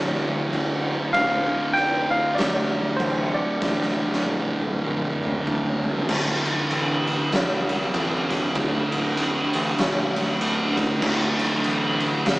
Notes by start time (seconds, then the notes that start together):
Already playing: A#1 D2 A2 D3 D5
0.28 D2
0.53 D2, kick, crash
1.13 D1 D2 A2 F5, kick, crash
1.17 D3
1.73 F1 G5, crash
2.11 F5
2.35 F1 D2 D5, snare, crash
2.39 A2 D3
2.97 A1 C5, kick, crash
3.34 D5
3.62 A1 D2 A2 D3, kick, snare
3.82 snare
4.13 snare
4.24 A#1, high tom
4.60 C2, high tom
4.73 mid tom
4.84 A#1 D2 A2 D3
5.04 mid tom
5.22 D2, mid tom
5.47 D2, kick, mid tom
5.65 floor tom
5.83 floor tom
5.97 floor tom
6.09 D1 D2 A2 D3, kick, crash
6.45 F1, ride
6.71 A1, ride
7.07 ride
7.32 A#1 D2 A2 D3, snare, ride
7.69 C2, ride
7.94 A1, kick, ride
8.30 kick, snare, ride
8.55 D1 D2 A2 D3, kick, ride
8.92 D1, ride
9.17 F1, ride
9.53 A1, ride
9.78 A#1 D2 A2 D3, snare, ride
10.16 ride
10.41 D2, ride
10.77 kick, ride
11.02 D1 D2 A2 D3, kick, crash
11.39 F1, ride
11.64 A1, ride
12.00 ride
12.26 A#1 D2 A2 D3, snare, ride